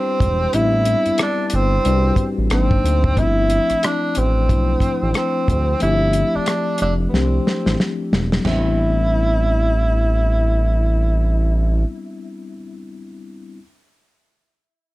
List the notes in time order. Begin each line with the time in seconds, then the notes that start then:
Already playing: G3 C4 D4 G4 B4
0.20 E1, kick, closed hi-hat
0.53 A1 G3 B3 C4 D4 E4, closed hi-hat
0.85 closed hi-hat
1.06 G1, closed hi-hat
1.18 cross-stick, closed hi-hat
1.22 D4
1.47 D4, closed hi-hat
1.53 G1 C4
1.85 C2 G3 C4 D4 F#4 B4, closed hi-hat
1.94 G4
2.16 kick, closed hi-hat
2.38 A1
2.50 G#1 F#3 A#3 C4 D4 D#4, cross-stick, closed hi-hat
2.71 kick
2.84 D2, closed hi-hat
3.04 kick
3.15 G1 F3 A3 C4 D4 E4, kick, closed hi-hat
3.50 closed hi-hat
3.70 A1, cross-stick, closed hi-hat
3.83 D4, cross-stick, closed hi-hat
4.15 A1 C4, closed hi-hat
4.48 B1 F3 A3 C4 D4 E4, kick, closed hi-hat
4.80 kick, closed hi-hat
5.02 A1
5.14 C4, cross-stick, closed hi-hat
5.48 D2, kick, closed hi-hat
5.80 G1 F3 A3 C4 D4 E4 G4, closed hi-hat
6.13 closed hi-hat
6.35 F1 D4
6.46 cross-stick, closed hi-hat
6.78 F1, closed hi-hat
6.82 D4
7.09 F3 B3
7.13 C2 A3 C4 D4 G4, snare
7.47 snare
7.66 A1, snare
7.80 snare
8.13 E1, snare
8.32 snare
8.39 G3 B3
8.45 A1 C4 E4, snare, floor tom, china
8.49 D4 E4